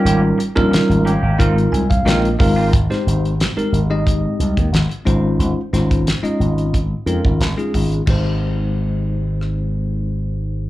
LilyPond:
<<
  \new Staff \with { instrumentName = "Tine electric piano" } { \time 4/4 \key aes \major \tempo 4 = 90 << { r2 r8 aes''16 f''16 ees''8 f''8 | r1 | r1 | r1 | } \\ { <g des' ees' f' bes'>8 r16 <g des' ees' f' bes'>8. r8 <aes c' ees' f' bes'>8. r16 <aes c' ees' f' bes'>16 r16 <aes c' ees' f' bes'>8 | r16 <aes c' ees' g' c''>8. r16 <aes c' ees' g' bes'>16 r16 <aes c' ees' g' ees''>4~ <aes c' ees' g' ees''>16 r8 <aes des' ees' f' c''>8~ | <aes des' ees' f' c''>16 r16 <aes des' ees' f' c''>8 r16 <aes des' ees' f' ees''>8. r8 <aes des' ees' f' bes'>8 r16 <aes des' ees' f' aes'>8. | <aes c' ees' g' c''>1 | } >> }
  \new Staff \with { instrumentName = "Clean electric guitar" } { \time 4/4 \key aes \major <f bes des' g'>16 r4 r16 <f bes des' g'>16 <bes des' g'>16 <ees bes c' f'>16 r8. <ees bes c' f'>16 r8 <bes c' f'>16 | r1 | r1 | r1 | }
  \new Staff \with { instrumentName = "Slap bass" } { \clef bass \time 4/4 \key aes \major aes,,8 r16 bes,,16 r16 aes,,8 aes,,16 aes,,8 c,8 bes,,8 aes,,8 | aes,,16 r16 aes,,8. r16 aes,,4 c,16 ees,16 aes,,16 r16 aes,,8 | aes,,16 r16 aes,,8. r16 aes,,4 f,16 aes,,16 aes,,16 r16 aes,,8 | aes,,1 | }
  \new DrumStaff \with { instrumentName = "Drums" } \drummode { \time 4/4 hh8 hh16 bd16 <hh sn>16 hh16 hh8 <hh bd>16 hh16 hh16 <hh bd>16 <hh sn>16 hh16 <hho bd>8 | <hh bd>16 <hh sn>16 hh16 hh16 <hh sn>16 hh16 hh8 <hh bd>8 hh16 <hh bd>16 <hh sn>16 hh16 <hh bd>8 | hh8 <hh sn>16 <hh bd>16 <hh sn>16 hh16 hh16 hh16 <hh bd>8 hh16 bd16 <hh sn>16 hh16 <hho bd>16 hh16 | <cymc bd>4 r4 ss4 r4 | }
>>